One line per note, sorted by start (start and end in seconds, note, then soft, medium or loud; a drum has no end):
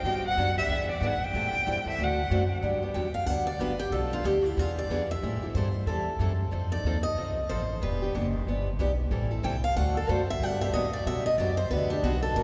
0.00 0.35 G2 medium
0.00 0.27 G5 loud
0.05 0.25 D3 medium
0.05 0.25 F#3 medium
0.05 0.25 B3 medium
0.05 0.25 D4 medium
0.05 0.26 G4 medium
0.28 0.56 F#5 medium
0.37 0.68 F#2 medium
0.37 0.48 D3 medium
0.37 0.48 F#3 medium
0.37 0.48 B3 medium
0.37 0.48 D4 medium
0.37 0.48 G4 medium
0.58 0.70 B3 soft
0.58 0.70 D4 medium
0.58 0.69 G4 medium
0.58 0.87 E5 loud
0.68 1.00 E2 medium
0.68 0.90 E3 medium
0.68 0.90 B3 medium
0.68 0.90 D4 medium
0.68 0.91 G#4 medium
0.91 1.08 D5 medium
1.01 1.19 G#2 medium
1.01 1.13 E3 medium
1.01 1.13 B3 medium
1.01 1.13 D4 medium
1.01 1.14 G#4 loud
1.06 1.26 F#5 medium
1.20 muted upright bass stroke soft
1.25 1.88 G5 loud
1.33 1.52 A2 medium
1.33 1.55 E3 medium
1.33 1.55 G3 medium
1.33 1.55 C4 medium
1.33 1.55 E4 medium
1.33 1.55 A4 medium
1.53 muted upright bass stroke soft
1.66 1.85 G2 medium
1.66 1.77 E3 medium
1.66 1.77 G3 medium
1.66 1.78 C4 medium
1.66 1.78 E4 medium
1.66 1.78 A4 medium
1.85 1.98 C4 soft
1.85 1.98 E4 medium
1.85 1.98 A4 medium
1.85 muted upright bass stroke soft
1.90 2.06 E5 medium
1.99 2.30 D2 medium
1.99 2.19 D3 medium
1.99 2.19 A3 medium
1.99 2.19 C4 medium
1.99 2.19 F#4 medium
1.99 2.20 A4 medium
2.04 2.54 F#5 medium
2.30 2.62 F#2 medium
2.30 2.42 D3 medium
2.30 2.42 A3 medium
2.30 2.42 C4 medium
2.30 2.42 F#4 medium
2.30 2.42 A4 medium
2.62 2.95 G2 medium
2.62 2.82 D3 medium
2.62 2.82 F#3 medium
2.62 2.82 B3 medium
2.62 2.82 D4 medium
2.62 2.81 G4 medium
2.82 2.94 B3 soft
2.82 2.95 D4 soft
2.82 2.95 G4 medium
2.94 3.14 E2 medium
2.94 3.07 D3 medium
2.94 3.06 F#3 medium
2.94 3.07 B3 medium
2.94 3.07 D4 medium
2.94 3.07 G4 medium
2.94 3.14 G5 medium
3.14 3.26 F5 medium
3.14 muted upright bass stroke soft
3.26 3.59 D2 medium
3.26 3.49 D3 medium
3.26 3.49 F#3 medium
3.26 3.49 B3 medium
3.26 3.49 D4 medium
3.26 3.50 G4 medium
3.26 3.46 F#5 medium
3.47 3.60 D5 medium
3.59 3.91 G1 medium
3.59 3.71 D3 medium
3.59 3.72 F#3 medium
3.59 3.72 B3 medium
3.59 3.72 D4 medium
3.59 3.72 G4 medium
3.59 3.80 B4 medium
3.79 3.92 G4 medium
3.91 4.24 B1 medium
3.91 4.12 B2 medium
3.91 4.12 F3 medium
3.91 4.12 A3 medium
3.91 4.11 D4 medium
3.91 4.12 A4 medium
3.91 4.10 A4 medium
4.11 4.23 A3 soft
4.11 4.24 D4 medium
4.11 4.25 F4 medium
4.11 4.23 A4 medium
4.23 4.56 D2 medium
4.23 4.35 B2 medium
4.23 4.36 F3 medium
4.23 4.36 A3 medium
4.23 4.36 D4 medium
4.23 4.45 G4 medium
4.23 4.36 A4 medium
4.45 4.59 E4 medium
4.57 4.88 E2 medium
4.57 4.78 E3 medium
4.57 4.78 B3 medium
4.57 4.78 D4 medium
4.57 4.71 F4 medium
4.57 4.78 G#4 medium
4.79 5.08 D5 medium
4.89 5.21 F2 medium
4.89 5.01 E3 medium
4.89 5.02 B3 medium
4.89 5.02 D4 medium
4.89 5.02 G#4 loud
5.11 5.53 E5 loud
5.22 5.41 A2 medium
5.22 5.42 E3 medium
5.22 5.42 G3 medium
5.22 5.42 C4 medium
5.22 5.42 E4 medium
5.22 5.41 A4 medium
5.42 5.56 C4 soft
5.42 5.55 E4 soft
5.42 5.55 A4 medium
5.42 muted upright bass stroke soft
5.54 5.85 G2 medium
5.54 5.67 E3 medium
5.54 5.67 G3 medium
5.54 5.67 C4 medium
5.54 5.67 E4 medium
5.54 5.67 A4 medium
5.54 5.85 C5 medium
5.86 6.18 E2 medium
5.86 6.08 E3 medium
5.86 6.08 G3 medium
5.86 6.09 C4 medium
5.86 6.09 E4 medium
5.86 6.18 A4 medium
5.86 6.09 A4 medium
6.19 6.51 F#2 medium
6.19 6.31 E3 medium
6.19 6.31 G3 medium
6.19 6.31 C4 medium
6.19 6.32 E4 medium
6.19 6.32 A4 loud
6.51 6.83 F2 medium
6.51 6.71 F3 medium
6.51 6.71 C4 medium
6.51 6.71 D#4 medium
6.51 6.70 A4 medium
6.71 6.85 C4 soft
6.71 6.85 D#4 soft
6.71 6.84 A4 medium
6.71 7.02 D5 medium
6.84 7.16 D#2 medium
6.84 6.97 F3 medium
6.84 6.97 C4 medium
6.84 6.97 D#4 medium
6.84 6.97 A4 medium
7.03 7.46 D#5 medium
7.17 7.49 C2 medium
7.17 7.38 F3 medium
7.17 7.38 C4 medium
7.17 7.38 D#4 medium
7.17 7.38 A4 medium
7.49 7.81 A1 medium
7.49 7.61 F3 medium
7.49 7.61 C4 medium
7.49 7.61 D#4 medium
7.49 7.61 A4 medium
7.49 7.80 C5 medium
7.81 8.14 E1 medium
7.81 8.01 E3 medium
7.81 8.01 B3 medium
7.81 8.01 D4 medium
7.81 8.01 G4 medium
7.81 8.13 B4 medium
8.02 8.14 B3 soft
8.02 8.14 D4 medium
8.02 8.14 G4 medium
8.15 8.46 F#1 medium
8.15 8.25 E3 medium
8.15 8.26 B3 medium
8.15 8.26 D4 medium
8.15 8.26 G4 medium
8.47 8.78 G1 medium
8.47 8.68 E3 medium
8.47 8.68 B3 medium
8.47 8.68 D4 medium
8.47 8.68 G4 medium
8.79 9.10 B1 medium
8.79 8.90 E3 medium
8.79 8.90 B3 medium
8.79 8.91 D4 medium
8.79 8.91 G4 medium
9.11 9.43 A1 medium
9.11 9.30 E3 medium
9.11 9.30 G3 medium
9.11 9.31 C4 medium
9.11 9.30 E4 medium
9.11 9.30 A4 medium
9.31 9.42 C4 soft
9.31 9.43 E4 medium
9.31 9.43 A4 medium
9.43 9.75 C2 medium
9.43 9.54 E3 medium
9.43 9.55 G3 medium
9.43 9.55 C4 medium
9.43 9.55 E4 medium
9.43 9.55 A4 medium
9.43 9.63 G5 medium
9.64 9.76 F5 medium
9.76 10.08 D2 medium
9.76 9.97 D3 medium
9.76 9.97 A3 medium
9.76 9.97 C4 medium
9.76 9.97 F#4 medium
9.76 9.97 A4 medium
9.76 9.95 F#5 loud
9.97 10.10 A4 medium
10.08 10.39 F#2 medium
10.08 10.20 D3 medium
10.08 10.20 A3 medium
10.08 10.20 C4 medium
10.08 10.20 F#4 loud
10.08 10.20 A4 loud
10.08 10.29 C5 medium
10.30 10.43 E5 loud
10.40 10.72 G2 medium
10.40 10.60 D3 medium
10.40 10.60 F#3 medium
10.40 10.60 B3 medium
10.40 10.60 D4 medium
10.40 10.60 G4 medium
10.40 10.61 F#5 medium
10.61 10.74 B3 soft
10.61 10.74 D4 medium
10.61 10.73 G4 medium
10.61 10.73 E5 medium
10.73 11.05 A2 medium
10.73 10.85 D3 medium
10.73 10.85 F#3 medium
10.73 10.85 B3 medium
10.73 10.85 D4 medium
10.73 10.85 G4 medium
10.73 10.92 D#5 medium
10.93 11.05 D5 medium
11.06 11.37 B2 medium
11.06 11.27 D3 medium
11.06 11.27 F#3 medium
11.06 11.27 B3 medium
11.06 11.27 D4 medium
11.06 11.27 G4 medium
11.06 11.25 E5 medium
11.26 11.38 D#5 loud
11.38 11.69 F#2 medium
11.38 11.50 D3 medium
11.38 11.50 F#3 medium
11.38 11.50 B3 medium
11.38 11.50 D4 medium
11.38 11.50 G4 medium
11.38 11.57 D5 medium
11.57 11.70 C5 loud
11.70 12.02 D2 medium
11.70 11.90 D3 medium
11.70 11.90 F#3 medium
11.70 11.90 B3 medium
11.70 11.90 D4 medium
11.70 11.90 G4 medium
11.70 11.90 B4 medium
11.90 12.03 B3 soft
11.90 12.02 D4 medium
11.90 12.03 D4 medium
11.90 12.03 G4 medium
12.03 12.34 B1 medium
12.03 12.14 D3 medium
12.03 12.14 F#3 medium
12.03 12.14 B3 loud
12.03 12.15 D4 medium
12.03 12.22 F#4 medium
12.03 12.15 G4 loud
12.22 12.35 A4 medium
12.35 12.43 F#1 medium
12.35 12.43 C#3 medium
12.35 12.43 E3 medium
12.35 12.43 A#3 medium
12.35 12.43 C#4 medium
12.35 12.43 F#4 medium
12.35 12.43 A#4 medium